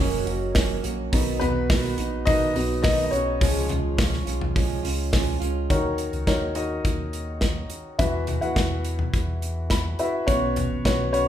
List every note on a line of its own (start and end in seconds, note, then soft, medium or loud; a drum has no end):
0.00 0.23 F1 loud
0.00 0.27 F#2 medium
0.00 0.27 C#3 medium
0.00 0.27 F#3 medium
0.00 0.51 F#3 medium
0.00 0.28 A#3 medium
0.00 0.51 A#3 medium
0.00 0.27 C#4 medium
0.00 1.15 C#4 medium
0.00 1.13 D#4 medium
0.00 0.25 F#4 medium
0.00 1.15 C#5 loud
0.00 1.15 D#5 loud
0.26 0.80 F#1 loud
0.26 0.54 F#3 soft
0.26 0.55 A#3 soft
0.26 0.56 C#4 medium
0.26 0.55 F#4 medium
0.26 hi-hat pedal medium
0.26 open hi-hat medium
0.55 0.84 F#3 medium
0.55 0.85 A#3 medium
0.55 0.84 C#4 medium
0.55 0.82 F#4 medium
0.55 kick loud
0.55 snare loud
0.55 hi-hat pedal medium
0.55 open hi-hat medium
0.83 1.11 A#1 medium
0.83 1.13 F#3 soft
0.83 1.14 A#3 soft
0.83 1.13 C#4 soft
0.83 1.12 F#4 medium
0.83 hi-hat pedal medium
0.83 open hi-hat medium
1.12 1.95 B1 loud
1.12 1.42 B2 medium
1.12 1.42 D#3 medium
1.12 2.53 F#3 medium
1.12 1.39 B3 soft
1.12 1.42 B3 medium
1.12 2.26 D#4 medium
1.12 1.42 D#4 loud
1.12 1.40 F#4 medium
1.12 kick loud
1.12 hi-hat pedal medium
1.12 open hi-hat loud
1.40 2.23 B3 medium
1.40 1.71 D#4 medium
1.40 1.70 F#4 medium
1.40 2.29 B4 loud
1.40 floor tom medium
1.40 hi-hat pedal medium
1.40 open hi-hat medium
1.45 1.70 B3 medium
1.70 1.98 D#3 medium
1.70 1.99 B3 medium
1.70 1.99 D#4 medium
1.70 1.97 F#4 medium
1.70 kick loud
1.70 snare loud
1.70 hi-hat pedal medium
1.70 open hi-hat medium
1.84 snare soft
1.98 2.52 A#1 loud
1.98 2.27 B3 soft
1.98 2.27 D#4 medium
1.98 2.27 F#4 medium
1.98 hi-hat pedal medium
1.98 open hi-hat medium
2.25 2.55 B2 medium
2.25 2.56 D#3 medium
2.25 2.56 B3 medium
2.25 2.54 D#4 medium
2.25 2.56 D#4 medium
2.25 2.54 F#4 medium
2.25 2.81 D#5 loud
2.25 kick loud
2.25 hi-hat pedal medium
2.25 open hi-hat medium
2.55 3.09 B1 medium
2.55 2.81 F#3 medium
2.55 2.81 B3 soft
2.55 2.84 B3 soft
2.55 2.82 D#4 soft
2.55 2.85 D#4 medium
2.55 2.84 F#4 medium
2.55 hi-hat pedal medium
2.55 open hi-hat medium
2.83 3.13 D#3 medium
2.83 3.13 B3 medium
2.83 3.04 D#4 medium
2.83 3.13 D#4 medium
2.83 3.03 D#5 loud
2.83 kick loud
2.83 snare loud
2.83 hi-hat pedal medium
2.83 open hi-hat medium
2.87 3.11 F#4 medium
3.04 3.12 D#5 medium
3.11 3.39 B1 medium
3.11 3.40 C#4 medium
3.11 3.42 D#4 medium
3.11 3.41 F#4 medium
3.11 3.94 C#5 medium
3.11 hi-hat pedal medium
3.11 open hi-hat medium
3.15 3.41 B3 medium
3.40 4.23 C#2 medium
3.40 3.69 C#3 medium
3.40 4.23 F3 medium
3.40 3.70 F3 medium
3.40 4.23 G#3 medium
3.40 3.70 G#3 medium
3.40 4.23 C#4 medium
3.40 3.70 C#4 medium
3.40 3.68 F4 medium
3.40 kick loud
3.40 hi-hat pedal medium
3.40 open hi-hat loud
3.69 3.97 G#3 medium
3.69 3.98 C#4 medium
3.69 3.98 F4 medium
3.69 floor tom medium
3.69 hi-hat pedal medium
3.69 open hi-hat medium
3.97 4.26 F3 medium
3.97 4.27 G#3 medium
3.97 4.26 C#4 medium
3.97 4.24 F4 medium
3.97 kick loud
3.97 snare loud
3.97 hi-hat pedal medium
3.97 open hi-hat medium
4.13 snare soft
4.25 4.80 B1 loud
4.25 4.55 G#3 soft
4.25 4.55 C#4 medium
4.25 4.55 F4 soft
4.25 hi-hat pedal medium
4.25 open hi-hat medium
4.41 floor tom medium
4.54 4.84 C#3 medium
4.54 4.84 F3 medium
4.54 4.85 G#3 medium
4.54 4.83 C#4 medium
4.54 4.82 F4 medium
4.54 kick loud
4.54 hi-hat pedal medium
4.54 open hi-hat medium
4.83 5.38 C#2 medium
4.83 5.12 G#3 soft
4.83 5.13 C#4 soft
4.83 5.12 F4 medium
4.83 hi-hat pedal medium
4.83 open hi-hat medium
5.12 5.41 F3 medium
5.12 5.42 G#3 medium
5.12 5.41 C#4 medium
5.12 5.39 F4 medium
5.12 kick loud
5.12 snare loud
5.12 hi-hat pedal medium
5.12 open hi-hat loud
5.40 5.68 C#2 medium
5.40 5.72 G#3 soft
5.40 5.71 C#4 medium
5.40 5.70 F4 medium
5.40 hi-hat pedal medium
5.40 open hi-hat medium
5.70 6.10 D#2 medium
5.70 6.52 D#3 medium
5.70 6.24 D#4 medium
5.70 6.24 F#4 medium
5.70 6.24 A#4 medium
5.70 6.24 C#5 medium
5.70 kick loud
5.70 closed hi-hat loud
5.98 closed hi-hat medium
6.13 6.27 C#2 medium
6.13 closed hi-hat soft
6.27 6.81 D#2 medium
6.27 6.54 D#4 medium
6.27 6.54 F#4 medium
6.27 6.54 A#4 medium
6.27 6.54 C#5 medium
6.27 kick medium
6.27 snare medium
6.27 closed hi-hat medium
6.55 7.63 D#4 medium
6.55 7.63 F#4 medium
6.55 7.63 A#4 medium
6.55 7.63 D#5 medium
6.55 closed hi-hat medium
6.85 7.67 D#2 loud
6.85 kick medium
6.85 closed hi-hat medium
7.13 closed hi-hat medium
7.41 kick medium
7.41 snare medium
7.41 closed hi-hat medium
7.70 closed hi-hat medium
7.98 8.39 E2 loud
7.98 8.81 E3 medium
7.98 8.39 E4 medium
7.98 8.39 F#4 medium
7.98 8.39 B4 medium
7.98 8.39 E5 medium
7.98 kick loud
7.98 closed hi-hat loud
8.27 closed hi-hat medium
8.27 floor tom medium
8.41 8.55 D#2 medium
8.41 9.49 E4 medium
8.41 9.49 F#4 medium
8.41 9.49 B4 medium
8.41 9.49 F#5 medium
8.41 closed hi-hat soft
8.56 9.10 E2 medium
8.56 kick loud
8.56 snare medium
8.56 closed hi-hat medium
8.85 closed hi-hat medium
8.99 floor tom medium
9.13 9.95 E2 loud
9.13 kick medium
9.13 closed hi-hat medium
9.42 closed hi-hat medium
9.70 10.24 B5 medium
9.70 kick loud
9.70 snare medium
9.70 closed hi-hat medium
9.99 10.26 E4 medium
9.99 10.25 F#4 medium
9.99 10.25 B4 medium
9.99 10.27 E5 medium
9.99 closed hi-hat medium
10.27 10.68 B1 medium
10.27 11.09 B2 medium
10.27 10.81 C#4 medium
10.27 10.81 F#4 medium
10.27 10.81 B4 medium
10.27 10.81 C#5 medium
10.27 kick loud
10.27 closed hi-hat loud
10.56 closed hi-hat medium
10.56 floor tom medium
10.71 10.84 A#1 medium
10.85 11.28 B1 loud
10.85 11.11 C#4 medium
10.85 11.11 F#4 medium
10.85 11.11 B4 medium
10.85 11.11 C#5 medium
10.85 kick medium
10.85 snare loud
10.85 closed hi-hat medium
11.12 11.28 C#4 medium
11.12 11.28 F#4 medium
11.12 11.28 B4 medium
11.12 11.28 C#5 medium
11.12 closed hi-hat medium